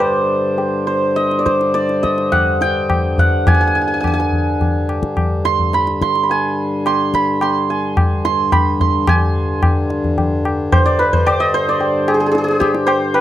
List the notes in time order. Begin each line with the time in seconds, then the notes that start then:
Already playing: G2 D3 D5 G5
0.00 C5, tabla na
0.58 tabla tin
0.87 C5
1.16 D#5, tabla te
1.31 tabla te
1.39 D5
1.46 C5, tabla ke
1.61 tabla te
1.74 D5, tabla te
1.89 tabla te
2.03 D#5, tabla ke
2.18 tabla te
2.32 F#5, tabla na, tabla ge
2.61 G5, tabla te
2.90 tabla na, tabla ge
3.18 F#5, tabla ge
3.47 G#5, tabla na, tabla ge
3.55 G#5
3.61 G#5
3.67 G#5
3.75 G#5
3.81 G#5
3.88 G#5
3.94 G#5
4.01 G#5, tabla na, tabla ge
4.07 G#5
4.14 G#5
4.20 G#5
4.32 tabla ge
4.61 tabla tin, tabla ge
4.89 tabla na
5.03 tabla ke
5.17 tabla na, tabla ge
5.45 C6, tabla te
5.59 tabla ge
5.73 B5, tabla te
5.87 tabla te
6.02 C6, tabla ke
6.15 tabla te
6.23 B5
6.30 G#5, tabla tin
6.86 C6, tabla na
7.14 B5, tabla ke
7.41 C6, tabla na
7.70 G#5
7.97 tabla na, tabla ge
8.25 C6, tabla te
8.52 B5, tabla na, tabla ge
8.80 C6, tabla ge
9.07 G2 D3 G#5, tabla na, tabla ge
9.63 tabla na, tabla ge
9.90 tabla te
10.04 tabla ge
10.18 tabla tin, tabla ge
10.45 tabla na
10.72 C5, tabla na, tabla ge
10.86 D5
10.99 B4, tabla te
11.13 C5, tabla ge
11.26 D5, tabla na
11.40 D#5
11.54 C5
11.69 D5
11.81 tabla tin
12.08 G#4, tabla na
12.14 G#4
12.20 G#4
12.26 G#4
12.32 G#4, tabla te
12.38 G#4
12.44 G#4
12.48 G#4, tabla te
12.60 G4, tabla ke
12.75 tabla te
12.87 C5, tabla na
13.14 B4, tabla na